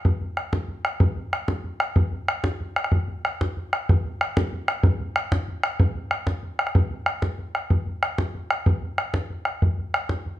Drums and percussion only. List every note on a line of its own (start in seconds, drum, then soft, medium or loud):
0.05 bodhran medium
0.22 bodhran soft
0.37 bodhran medium
0.53 bodhran medium
0.68 bodhran soft
0.85 bodhran medium
1.00 bodhran medium
1.17 bodhran soft
1.33 bodhran medium
1.48 bodhran medium
1.64 bodhran soft
1.80 bodhran medium
1.96 bodhran medium
2.13 bodhran soft
2.28 bodhran medium
2.44 bodhran medium
2.61 bodhran soft
2.76 bodhran medium
2.84 bodhran medium
2.92 bodhran medium
3.08 bodhran soft
3.25 bodhran medium
3.41 bodhran medium
3.57 bodhran soft
3.73 bodhran medium
3.89 bodhran medium
4.05 bodhran soft
4.21 bodhran medium
4.37 bodhran loud
4.53 bodhran soft
4.68 bodhran medium
4.83 bodhran medium
5.00 bodhran soft
5.16 bodhran medium
5.32 bodhran medium
5.48 bodhran soft
5.63 bodhran medium
5.80 bodhran medium
5.95 bodhran soft
6.11 bodhran medium
6.27 bodhran medium
6.43 bodhran soft
6.59 bodhran medium
6.67 bodhran medium
6.75 bodhran medium
6.91 bodhran soft
7.06 bodhran medium
7.22 bodhran medium
7.39 bodhran soft
7.55 bodhran medium
7.70 bodhran medium
7.87 bodhran soft
8.03 bodhran medium
8.18 bodhran medium
8.35 bodhran soft
8.50 bodhran medium
8.66 bodhran medium
8.82 bodhran soft
8.98 bodhran medium
9.14 bodhran medium
9.30 bodhran soft
9.45 bodhran medium
9.62 bodhran medium
9.79 bodhran soft
9.94 bodhran medium
10.09 bodhran medium
10.26 bodhran soft